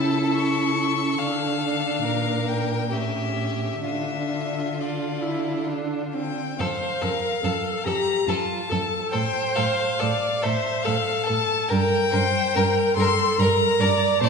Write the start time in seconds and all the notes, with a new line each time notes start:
Already playing: C#3 E4 A4 A5
0.36 C#6
1.18 D3 D4 F5
2.03 A#2 A#4
2.48 G5
2.91 A2 C#4 G4 E5
3.83 D3 D4 F4 E5
4.77 F4 D5
5.22 E4
5.68 D4
6.15 C4 G5
6.59 F2 A4 C5 F5
7.01 F2 A4 A#4
7.43 F2 A4
7.84 F2 G4 A4 A#5
8.27 F2 F4 A4 A5
8.69 F2 A4
9.11 A2 A4 C5 G5
9.55 A2 A4 F5
9.99 A2 A4 D5
10.42 A2 A4 C5 E5
10.83 A4 F5
10.87 A2
11.24 A4 A5
11.29 A2
11.68 G2 A#4 G5
12.11 G2 A#4 C5
12.55 G2 A#4
12.96 G2 A4 A#4 C6
13.38 G2 A#4 A#5
13.80 G2 A#4 D5
14.21 A#2 C5 D5 A5